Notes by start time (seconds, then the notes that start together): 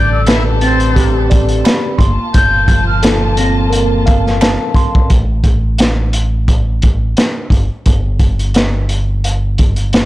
Already playing: A1 G2 C3 D3 G3 D4 A4 D5
0.12 E6
0.26 E4 B4 E5, finger snap, snare, closed hi-hat
0.61 C4 C5 A6, closed hi-hat
0.80 closed hi-hat
0.96 G4, kick, closed hi-hat
1.30 D5, kick, closed hi-hat
1.49 closed hi-hat
1.65 B5, finger snap, snare, closed hi-hat
1.98 G1 A#3 F4 A5 C6, kick, closed hi-hat
2.34 G1 A#2 G6, kick, closed hi-hat
2.68 F3, kick, closed hi-hat
2.87 F6
3.03 A4, finger snap, snare, closed hi-hat
3.37 C4 A#6, closed hi-hat
3.70 A#4, closed hi-hat
4.06 F5, kick, closed hi-hat
4.27 snare
4.41 A5, finger snap, snare, closed hi-hat
4.74 C6, kick, closed hi-hat
4.95 kick
5.10 A1, kick, closed hi-hat
5.44 kick, closed hi-hat
5.78 snare, closed hi-hat
6.13 closed hi-hat
6.48 kick, closed hi-hat
6.82 kick, closed hi-hat
7.17 snare, closed hi-hat
7.50 G1, kick, closed hi-hat
7.86 G1, kick, closed hi-hat
8.19 kick, closed hi-hat
8.39 closed hi-hat
8.54 snare, closed hi-hat
8.89 closed hi-hat
9.24 closed hi-hat
9.58 kick, closed hi-hat
9.76 closed hi-hat
9.93 snare, closed hi-hat